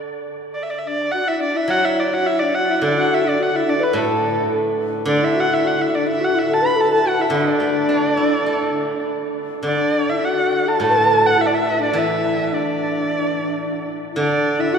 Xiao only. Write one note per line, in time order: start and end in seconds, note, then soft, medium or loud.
0.86 1.10 D4 medium
1.13 1.26 F#4 medium
1.27 1.42 E4 medium
1.40 1.57 D4 medium
1.55 1.72 E4 medium
1.71 1.85 F#4 medium
1.84 2.15 E4 medium
2.13 2.30 F#4 medium
2.28 2.44 E4 medium
2.42 2.56 D4 medium
2.57 2.71 F#4 medium
2.69 2.85 E4 medium
2.84 3.00 D4 medium
2.98 3.27 F#4 medium
3.25 3.41 D4 medium
3.39 3.53 F#4 medium
3.54 3.66 E4 medium
3.67 3.77 D4 medium
3.77 3.96 B4 medium
3.77 3.80 D5 medium
3.94 4.50 A4 medium
5.08 5.24 D4 medium
5.22 5.38 E4 medium
5.36 5.50 F#4 medium
5.51 5.67 E4 medium
5.65 5.76 F#4 medium
5.76 5.92 E4 medium
5.76 5.81 F#4 medium
5.94 6.08 D4 medium
6.07 6.22 E4 medium
6.20 6.37 F#4 medium
6.35 6.47 E4 medium
6.48 6.63 A4 medium
6.62 6.77 B4 medium
6.76 6.89 A4 medium
6.90 7.03 A4 medium
7.04 7.20 F#4 medium
7.19 7.32 E4 medium
7.33 9.03 D4 medium
9.67 10.12 D4 medium
10.11 10.17 E4 medium
10.18 10.20 D4 soft
10.18 10.23 E4 soft
10.24 10.70 F#4 medium
10.68 10.82 A4 medium
10.82 10.92 A4 medium
10.90 10.99 B4 medium
10.97 11.07 A4 medium
11.05 11.15 B4 medium
11.13 11.39 A4 medium
11.38 11.52 E4 medium
11.53 11.81 E4 medium
11.80 11.93 D4 medium
11.94 12.54 E4 medium
12.52 13.91 D4 medium
14.12 14.19 E4 medium
14.18 14.61 D4 medium
14.59 14.75 E4 medium
14.73 14.79 F#4 medium